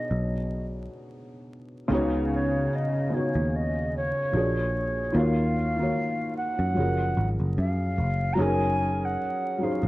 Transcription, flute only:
0.00 0.66 D#5 medium
2.34 2.77 C#5 medium
2.75 3.16 D#5 medium
3.14 3.57 C#5 medium
3.55 3.94 D#5 medium
3.97 5.18 C#5 loud
5.17 6.36 F5 loud
6.37 7.29 F#5 loud
7.60 8.35 F5 medium
8.33 8.43 A#5 medium
8.42 9.06 G#5 loud
9.05 9.64 F#5 loud
9.63 9.88 F5 medium

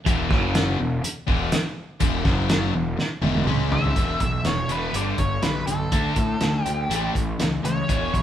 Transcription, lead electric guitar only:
3.73 4.20 E5 medium
4.22 4.46 E5 medium
4.46 4.71 C#5 medium
4.72 4.93 B4 medium
4.96 5.02 D5 medium
5.19 5.44 C#5 medium
5.42 5.65 B4 medium
5.67 6.63 A4 medium
6.63 7.11 G4 medium
7.65 8.13 C#5 medium
8.14 8.22 C#5 medium

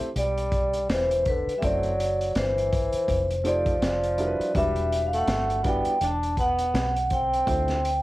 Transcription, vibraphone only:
0.18 0.86 D5 medium
0.91 1.28 C5 medium
1.28 1.55 B4 medium
1.58 1.63 E5 medium
1.64 2.39 D5 medium
2.37 3.49 C5 medium
3.47 4.52 D5 medium
4.57 5.02 E5 loud
5.06 5.14 F5 medium
5.16 5.68 F#5 medium
5.68 6.04 G5 medium
6.04 6.40 A5 loud
6.40 7.14 F#5 loud
7.13 8.02 G5 loud

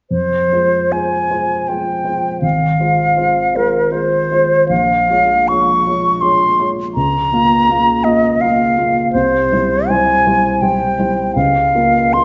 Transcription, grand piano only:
0.11 0.50 F2 soft
0.52 0.88 G#3 soft
0.52 0.89 F4 soft
0.52 0.89 C5 soft
0.92 1.27 G#3 soft
0.92 1.27 F4 soft
0.92 1.27 C5 soft
1.30 1.65 G#3 soft
1.30 1.65 F4 soft
1.30 1.65 C5 soft
1.69 2.03 G#3 soft
1.69 2.03 F4 soft
1.69 2.03 C5 soft
2.04 2.39 G#3 soft
2.04 2.39 F4 soft
2.04 2.39 C5 soft
2.42 2.79 G#1 soft
2.79 3.14 G#3 soft
2.79 3.14 F4 soft
2.79 3.14 C5 soft
3.16 3.51 G#3 soft
3.16 3.51 F4 soft
3.16 3.51 C5 soft
3.54 3.88 G#3 soft
3.54 3.88 F4 soft
3.54 3.89 C5 soft
3.91 4.27 G#3 soft
3.91 4.27 F4 soft
3.91 4.27 C5 soft
4.31 4.66 G#3 soft
4.31 4.66 F4 soft
4.31 4.67 C5 soft
4.70 5.08 A#1 soft
5.09 5.44 G#3 soft
5.09 5.45 F4 soft
5.09 5.45 C#5 soft
5.49 5.82 G#3 soft
5.49 5.83 F4 soft
5.49 5.83 C#5 soft
5.86 6.19 G#3 soft
5.86 6.19 F4 soft
5.86 6.19 C#5 soft
6.22 6.55 G#3 soft
6.22 6.55 F4 soft
6.22 6.55 C#5 soft
6.59 6.92 G#3 soft
6.59 6.92 F4 soft
6.59 6.92 C#5 soft
6.96 7.31 C#2 soft
7.32 7.65 A#3 soft
7.32 7.65 F4 soft
7.32 7.65 F5 soft
7.69 8.01 A#3 soft
7.69 8.01 F4 soft
7.69 8.02 F5 soft
8.04 8.37 A#3 soft
8.04 8.37 F4 soft
8.04 8.38 F5 soft
8.41 8.73 A#3 soft
8.41 8.73 F4 soft
8.41 8.73 F5 soft
8.78 9.10 A#3 soft
8.78 9.10 F4 soft
8.78 9.10 F5 soft
9.15 9.51 C2 soft
9.52 9.86 G3 soft
9.52 9.87 E4 soft
9.52 9.87 C5 soft
9.90 10.22 G3 soft
9.90 10.23 E4 soft
9.90 10.23 C5 soft
10.26 10.59 G3 soft
10.26 10.59 E4 soft
10.26 10.59 C5 soft
10.62 10.95 G3 soft
10.62 10.95 E4 soft
10.62 10.95 C5 soft
10.99 11.32 G3 soft
10.99 11.32 E4 soft
10.99 11.32 C5 soft
11.36 11.73 C#2 soft
11.75 12.09 A#3 soft
11.75 12.09 F4 soft
11.75 12.10 A#4 soft
12.14 12.24 A#3 soft
12.14 12.24 F4 soft
12.14 12.24 A#4 soft

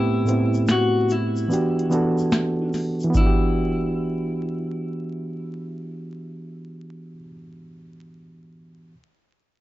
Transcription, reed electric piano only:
0.00 0.16 A2 medium
0.00 0.16 A3 medium
0.00 0.17 B3 medium
0.00 0.18 C4 medium
0.00 0.19 G4 medium
0.25 1.38 A2 medium
0.25 1.39 A3 medium
0.25 1.40 B3 medium
0.29 1.40 C4 medium
0.29 1.41 E4 medium
1.48 1.84 E3 medium
1.48 1.85 B3 medium
1.48 1.86 D4 medium
1.52 1.86 F#4 medium
1.52 1.87 G4 medium
1.89 2.71 E3 medium
1.89 2.72 B3 medium
1.89 2.73 D4 medium
1.89 2.73 F#4 medium
1.95 2.74 A4 medium
3.04 7.13 E3 medium
3.10 7.18 B3 medium
3.15 7.24 D4 medium
3.21 7.29 F#4 medium
3.26 7.34 G4 medium

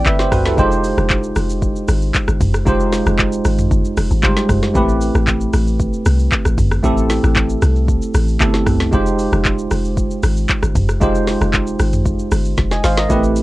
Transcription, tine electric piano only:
0.00 0.53 A3 medium
0.00 0.54 C4 medium
0.00 0.46 E4 medium
0.00 0.20 G4 medium
0.00 0.45 A4 medium
0.00 0.59 D5 medium
0.00 0.59 G5 medium
0.06 0.19 B4 medium
0.06 0.19 E5 medium
0.19 0.32 G4 medium
0.19 0.31 C5 medium
0.32 0.45 F#4 medium
0.32 0.45 B4 medium
0.45 0.71 E4 medium
0.45 0.70 A4 medium
0.56 2.62 G#3 medium
0.56 2.62 D#4 medium
0.56 2.63 F4 medium
0.56 2.63 G4 medium
0.56 2.63 C5 medium
2.65 4.19 G#3 medium
2.65 4.20 D#4 medium
2.65 4.20 F4 medium
2.65 4.20 G4 medium
2.65 4.21 C5 medium
4.22 4.29 G3 soft
4.22 4.75 D#4 medium
4.22 4.75 F4 medium
4.22 4.75 G4 medium
4.22 4.76 C5 medium
4.29 4.78 G#3 medium
4.74 6.79 A3 medium
4.74 6.80 C4 medium
4.74 6.80 E4 medium
4.74 6.80 G4 medium
4.74 6.81 B4 medium
6.83 8.37 A3 medium
6.83 8.37 C4 medium
6.83 8.37 E4 medium
6.83 8.38 G4 medium
6.83 8.38 A4 medium
8.40 8.92 A3 medium
8.40 8.47 B3 soft
8.40 8.93 E4 medium
8.40 8.92 G4 medium
8.40 8.93 A4 medium
8.46 8.96 C4 medium
8.91 10.97 G#3 medium
8.91 10.97 D#4 medium
8.91 10.97 F4 medium
8.91 10.98 G4 medium
8.91 10.98 C5 medium
11.00 13.05 G#3 medium
11.00 13.06 D#4 medium
11.00 13.06 F4 medium
11.00 13.07 G4 medium
11.00 12.30 C5 medium
12.72 12.84 D#5 medium
12.72 12.83 G#5 medium
12.84 12.97 C5 medium
12.84 12.97 F5 medium
12.98 13.23 A#4 medium
12.98 13.22 D#5 medium
13.09 13.43 A3 medium
13.09 13.16 B3 medium
13.09 13.43 E4 medium
13.09 13.43 G4 medium
13.09 13.43 B4 medium
13.16 13.43 C4 medium

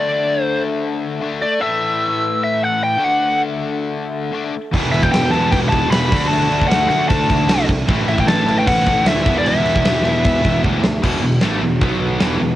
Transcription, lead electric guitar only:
0.00 0.42 D5 medium
0.42 0.61 C5 medium
1.42 1.61 D5 medium
1.61 2.42 E5 loud
2.44 2.60 E5 loud
2.64 2.81 F#5 loud
2.84 3.04 G5 loud
3.04 3.40 F#5 loud
4.92 5.03 E5 medium
5.03 5.11 G5 medium
5.12 5.33 G5 medium
5.31 5.53 A5 loud
5.51 5.57 G5 loud
5.69 5.90 A5 loud
5.90 6.32 B5 loud
6.28 6.67 A5 loud
6.68 6.87 F#5 loud
6.89 7.09 F#5 loud
7.09 7.64 A5 loud
8.09 8.19 E5 loud
8.20 8.24 G5 loud
8.28 8.58 A5 loud
8.59 8.67 G5 loud
8.67 9.08 F#5 loud
9.08 9.37 E5 loud
9.38 9.47 D5 loud
9.48 10.61 E5 loud

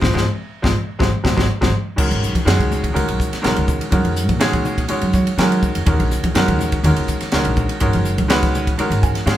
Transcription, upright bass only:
0.02 0.11 G#1 medium
0.15 0.24 G#1 medium
0.64 0.73 G#1 medium
1.00 1.09 G#1 medium
1.25 1.34 G#1 medium
1.37 1.46 G#1 medium
1.62 1.70 G#1 medium
1.98 2.09 C#2 medium
2.10 2.21 G#1 medium
2.22 2.33 B1 medium
2.46 2.57 F#2 medium
2.59 2.91 C#2 medium
2.95 3.06 C#2 medium
3.09 3.19 B1 medium
3.34 muted upright bass stroke soft
3.45 3.56 B1 medium
3.58 3.79 C#2 medium
3.92 4.04 F#2 medium
4.04 4.29 F2 medium
4.29 4.82 A#2 medium
4.89 muted upright bass stroke soft
5.02 5.12 F#2 medium
5.14 5.25 F#3 medium
5.37 5.59 F#3 medium
5.62 muted upright bass stroke soft
5.76 5.86 F2 medium
5.86 5.98 D#2 loud
6.00 6.10 A#1 medium
6.11 6.22 C#2 medium
6.35 6.46 F#2 medium
6.49 6.80 D#2 medium
6.83 6.95 D#2 loud
6.97 7.07 C#2 medium
7.22 muted upright bass stroke soft
7.33 7.44 C#2 loud
7.46 7.67 A#1 medium
7.81 7.92 G#1 medium
7.94 8.19 F#1 medium
8.18 8.71 C#2 medium
8.79 muted upright bass stroke soft
8.90 9.01 G#1 medium
9.03 9.14 G#2 medium
9.26 9.37 G#2 medium

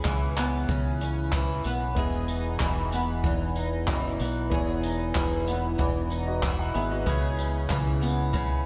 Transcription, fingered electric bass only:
0.05 0.65 C#2 medium
0.69 1.61 C#2 loud
1.65 1.94 B1 medium
1.97 2.56 E1 loud
2.61 3.88 E1 loud
3.88 4.17 F#1 medium
4.20 4.49 B1 loud
4.52 5.12 E1 loud
5.16 5.75 E1 loud
5.79 6.71 E1 loud
6.75 7.04 G#1 medium
7.07 7.66 C#2 loud
7.71 8.66 C#2 loud

